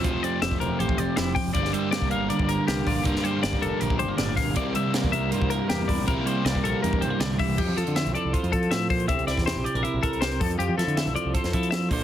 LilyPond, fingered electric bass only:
\new Staff \with { instrumentName = "Fingered electric bass" } { \clef bass \time 4/4 \key f \major \tempo 4 = 159 e,,16 r8. f,,8 e,,16 r16 a,,8 f,,16 r16 f,,8 r16 f,,16 | g,,8 r8. c,16 g,,8 r16 g,,8 r16 c,8 bes,,16 f,,16~ | f,,16 r8. g,,8 f,,16 r16 bes,,8 g,,16 r16 g,,8 r16 g,,16 | c,8 r8. e,16 c,8 r16 c,8 r16 e,8 e,16 bes,,16~ |
bes,,16 r8. c,8 bes,,16 r16 e,8 c,16 r16 c,8 r16 c,16 | f,16 f16 f16 d8 c,16 r16 c,16 r16 f,16 f4. | c,16 c,16 c,16 e,8 bes,,16 r16 bes,,16 r16 bes,,16 c,4 f,8 | f,16 f16 f16 d8 c,16 r16 c,16 r16 f,16 f4 bes,,8 | }